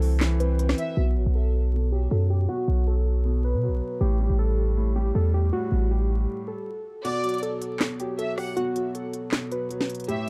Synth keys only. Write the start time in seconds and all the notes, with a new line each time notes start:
Already playing: A4
0.40 B4
0.97 F#4
1.35 A4
1.92 G4
2.11 A4
2.30 G4
2.49 F#4
2.87 A4
3.44 B4
4.01 G4
4.39 A4
4.96 G4
5.15 A4
5.34 G4
5.53 F#4
5.91 G4
6.48 A4
7.04 F#4
7.43 A4
8.00 G4
8.19 A4
8.38 G4
8.56 F#4
8.95 A4
9.52 B4
10.08 G4